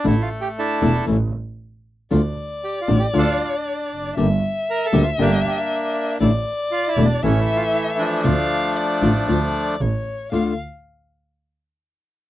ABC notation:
X:1
M:4/4
L:1/8
Q:1/4=117
K:Dm
V:1 name="Violin"
z8 | d8 | e8 | d4 e4 |
f2 d2 d2 ^c2 | f z6 z |]
V:2 name="Bandoneon"
(3E F G A2 z4 | z2 (3G F G A F z2 | z2 (3B A F G G z2 | z2 (3F E D (3^C E F E D- |
D6 z2 | z8 |]
V:3 name="Bandoneon"
A,2 [DE]2 z4 | z4 [DF]4 | z4 [B,D]4 | z4 [E,A,]3 [F,A,]- |
[F,A,]6 z2 | z8 |]
V:4 name="Nylon-string guitar"
[D,A,DE] z2 [D,A,DE] [E,A,^CE] z3 | [D,A,DF] z2 [D,A,DF] [D,A,DF] z3 | [D,G,B,DG] z2 [D,G,B,DG] [D,G,B,DG] z3 | [D,A,DE] z2 [D,A,DE] [E,A,^CE] z3 |
[D,A,DF] z2 [D,A,DF] [D,A,DF] z3 | [D,A,DF] z6 z |]
V:5 name="Double bass" clef=bass
A,,, z2 E,,, A,,, z3 | D,, z2 A,,, D,, z2 F,,, | G,,, z2 D,, G,,, z3 | A,,, z2 E,,, A,,, z3 |
D,, z2 A,,, D,, z A,,, z | D,, z6 z |]